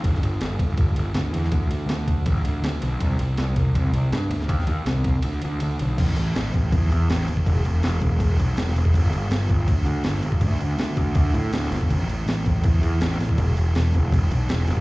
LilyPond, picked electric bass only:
\new Staff \with { instrumentName = "Picked electric bass" } { \clef bass \time 4/4 \key g \major \tempo 4 = 162 g,,8 g,,8 g,,8 g,,8 g,,8 g,,8 d,8 e,8 | d,8 d,8 d,4 a,,8 d,8 d,8 b,,8 | c,8 c,8 c,8 c,8 c,8 c,8 g,8 d,8 | ees,8 ees,8 c,4 d,8 d,8 d,8 b,,8 |
a,,8 a,,8 a,,8 a,,8 e,8 e,8 a,,8 ees,8 | e,,8 e,,8 e,,8 e,,8 e,,8 b,,8 e,,8 e,,8 | g,,8 g,,8 g,,8 g,,8 d,8 d,8 g,,8 g,,8 | d,8 d,8 d,8 d,8 d,8 a,8 d,8 g,,8 |
a,,8 a,,8 a,,8 a,,8 e,8 e,8 a,,8 a,,8 | e,,8 e,,8 e,,8 e,,8 e,,8 b,,8 e,,8 fis,,8 | }